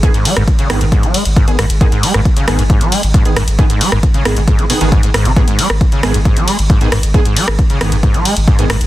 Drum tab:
RD |--x---x---x---x-|--x---x---x---x-|--x---x---x---x-|--x---x---x---x-|
HH |xxoxxxoxxxoxxxox|xxoxxxoxxxoxxxox|xxoxxxoxxxoxxxox|xxoxxxoxxxoxxxox|
SD |---r--r-------r-|---r--r-------r-|---r--r-------r-|---r--r-------r-|
BD |o---o---o---o---|o---o---o---o---|o---o---o---o---|o---o---o---o---|

RD |--x---x---x---x-|
HH |xxo-xxoxxxoxxxox|
SD |---r--r-------r-|
BD |o---o---o---o---|